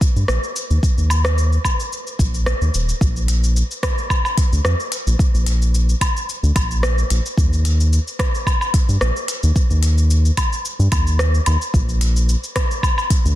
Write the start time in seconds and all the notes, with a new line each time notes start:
0.01 kick, shaker
0.16 G2, shaker
0.28 A#1, cross-stick, shaker
0.44 shaker
0.56 shaker
0.70 D#2, shaker
0.83 kick, shaker
0.97 D#2, shaker
1.10 low woodblock, shaker
1.25 cross-stick, shaker
1.38 shaker
1.52 shaker
1.65 kick, low woodblock, shaker
1.80 shaker
1.93 shaker
2.07 shaker
2.19 A#1, kick, shaker
2.34 shaker
2.46 cross-stick, shaker
2.61 D#2, shaker
2.74 D#1, shaker
2.89 shaker
3.01 A#1, kick, shaker
3.16 shaker
3.28 closed hi-hat, shaker
3.44 shaker
3.56 shaker
3.71 shaker
3.83 kick, cross-stick, closed hi-hat, low woodblock, shaker
3.98 shaker
4.10 kick, low woodblock, shaker
4.25 low woodblock, shaker
4.37 kick, closed hi-hat, shaker
4.52 D2, shaker
4.65 F2, cross-stick, shaker
4.80 shaker
4.92 closed hi-hat, shaker
5.07 A#1, shaker
5.19 kick, shaker
5.34 A#1, shaker
5.46 closed hi-hat, shaker
5.62 shaker
5.75 shaker
5.89 shaker
6.01 kick, closed hi-hat, low woodblock, shaker
6.17 shaker
6.29 shaker
6.43 D2, shaker
6.56 A#1, kick, closed hi-hat, low woodblock, shaker
6.71 shaker
6.83 cross-stick, shaker
6.98 shaker
7.10 A#1, closed hi-hat, shaker
7.26 shaker
7.37 D#2, kick, shaker
7.53 shaker
7.65 closed hi-hat, shaker
7.80 shaker
7.93 shaker
8.07 shaker
8.19 kick, cross-stick, closed hi-hat, low woodblock, shaker
8.35 shaker
8.47 kick, low woodblock, shaker
8.61 low woodblock, shaker
8.74 kick, closed hi-hat, shaker
8.89 G2, shaker
9.01 A#1, cross-stick, shaker
9.16 shaker
9.28 closed hi-hat, shaker
9.43 D#2, shaker
9.56 kick, shaker
9.70 D#2, shaker
9.83 closed hi-hat, shaker
9.98 shaker
10.11 shaker
10.25 shaker
10.37 kick, closed hi-hat, low woodblock, shaker
10.53 shaker
10.65 shaker
10.79 G2, shaker
10.92 D#2, kick, closed hi-hat, low woodblock, shaker
11.07 shaker
11.19 cross-stick, shaker
11.34 shaker
11.46 D#2, closed hi-hat, low woodblock, shaker
11.62 shaker
11.74 A#1, kick, shaker
11.89 shaker
12.01 closed hi-hat, shaker
12.16 shaker
12.29 shaker
12.44 shaker
12.56 kick, cross-stick, closed hi-hat, low woodblock, shaker
12.71 shaker
12.83 kick, low woodblock, shaker
12.98 low woodblock, shaker
13.10 kick, closed hi-hat, shaker
13.25 D2, shaker